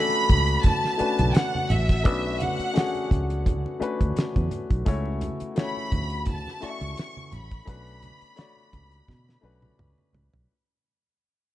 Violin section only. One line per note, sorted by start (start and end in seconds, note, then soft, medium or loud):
0.00 0.61 B5 loud
0.66 1.35 A5 medium
1.35 1.70 F#5 medium
1.69 2.40 E5 medium
2.42 3.11 F#5 medium
5.61 6.25 B5 medium
6.31 6.64 A5 loud
6.65 7.34 C#6 loud
7.35 9.80 B5 loud